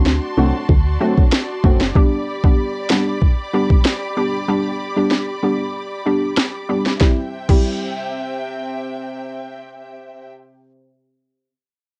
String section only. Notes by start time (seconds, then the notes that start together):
Already playing: F#4 D5 A5 C6
1.96 G4 B5 D6
7.01 C3 C4 E5 G5